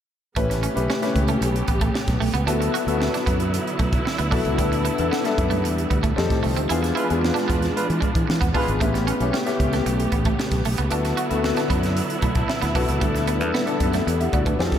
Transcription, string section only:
0.37 2.46 C#3 medium
0.37 2.46 A3 medium
0.37 6.13 B3 medium
0.37 2.46 G4 medium
2.47 6.13 D3 medium
2.47 4.56 F#3 medium
2.47 6.13 E4 medium
4.59 6.68 G3 medium
6.16 6.69 D#3 medium
6.16 8.77 F3 medium
6.16 6.69 A3 medium
6.70 8.78 E3 medium
6.70 8.78 G#3 medium
6.70 8.79 D4 medium
8.81 10.90 C#3 medium
8.81 10.89 A3 medium
8.81 14.56 B3 medium
8.81 10.90 G4 medium
10.91 13.00 D3 medium
10.91 13.00 F#3 medium
10.91 14.56 E4 medium
13.03 14.58 D3 medium
13.03 14.79 G3 medium
14.59 14.79 D#3 medium
14.59 14.79 A3 medium
14.59 14.79 F4 medium

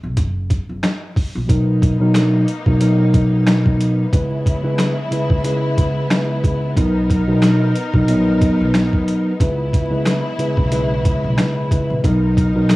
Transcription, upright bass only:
0.03 0.15 B1 medium
0.17 0.59 F#1 loud
0.69 0.81 F#1 medium
1.35 1.47 A#1 medium
6.77 7.30 B1 loud
7.94 8.47 A#1 medium
8.61 8.87 B1 medium
9.40 9.94 C#2 loud
10.58 11.11 B1 medium
11.24 11.36 B1 medium
11.90 12.02 A#1 medium
12.04 12.57 B1 loud

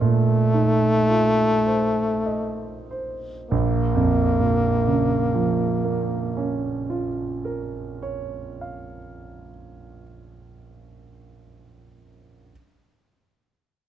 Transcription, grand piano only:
0.00 3.47 A#2 medium
0.00 1.66 C5 medium
0.00 2.26 D#5 medium
0.54 1.43 D#4 medium
1.09 2.01 F4 medium
1.66 2.64 C5 medium
2.26 3.28 D#5 medium
2.91 3.52 C5 medium
3.51 6.64 A#1 medium
3.95 7.08 F2 medium
4.40 7.53 A#2 medium
4.87 8.00 C#3 medium
5.35 8.48 F3 medium
5.85 8.98 A#3 medium
6.37 9.50 C#4 medium
6.90 10.03 F4 medium
7.45 10.58 A#4 medium
8.02 11.16 C#5 medium
8.61 11.68 F5 soft

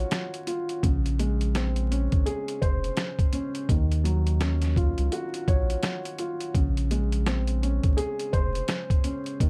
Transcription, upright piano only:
0.00 0.12 D#3 medium
0.00 0.47 F#3 medium
0.00 0.83 C#4 medium
0.00 0.45 F4 medium
0.00 0.83 F#4 loud
0.00 0.83 C#5 medium
0.47 0.83 F4 medium
0.83 2.97 C#3 medium
1.19 3.33 G#3 medium
1.56 3.69 C4 medium
1.91 3.31 C#4 medium
2.26 3.69 G#4 loud
2.62 3.69 C5 medium
3.33 3.69 C#4 medium
3.69 5.83 D#3 medium
4.04 6.18 F#3 medium
4.41 6.55 C#4 medium
4.76 6.17 F4 medium
5.12 6.55 F#4 loud
5.48 6.55 C#5 medium
6.19 6.54 F4 medium
6.54 8.69 C#3 medium
6.91 9.05 G#3 medium
7.27 9.41 C4 medium
7.62 9.02 C#4 medium
7.97 9.40 G#4 loud
8.33 9.40 C5 medium
9.04 9.40 C#4 medium
9.41 9.50 D#3 medium

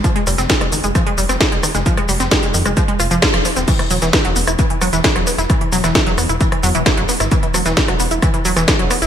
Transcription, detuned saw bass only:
0.27 0.35 F1 medium
0.38 0.47 F1 medium
0.61 0.69 F1 medium
0.73 0.81 F1 loud
0.84 0.92 F1 medium
1.18 1.26 F1 medium
1.29 1.38 F1 medium
1.52 1.60 F1 medium
1.75 1.83 F1 medium
2.09 2.17 F1 medium
2.20 2.28 F1 medium
2.43 2.51 F1 medium
2.54 2.63 F2 medium
2.66 2.74 F1 medium
3.00 3.08 F1 loud
3.11 3.19 F1 medium
3.34 3.42 D#1 medium
3.57 3.65 D#1 medium
3.91 3.99 E1 medium
4.02 4.10 E1 medium
4.25 4.33 E1 medium
4.36 4.44 E1 loud
4.48 4.56 E1 medium
4.82 4.90 E1 medium
4.93 5.01 E1 medium
5.16 5.24 E1 medium
5.38 5.47 E1 medium
5.73 5.81 E1 loud
5.84 5.92 E1 medium
6.07 6.15 E1 medium
6.18 6.26 E2 medium
6.29 6.38 E1 medium
6.63 6.72 E2 medium
6.75 6.83 E1 medium
6.98 7.06 G1 medium
7.20 7.29 G1 medium
7.54 7.63 E1 loud
7.66 7.74 E1 medium
7.89 7.97 E1 medium
8.00 8.08 E1 medium
8.11 8.19 E1 medium
8.45 8.54 E1 medium
8.57 8.65 E1 medium
8.79 8.88 E1 medium
9.02 9.07 E1 medium

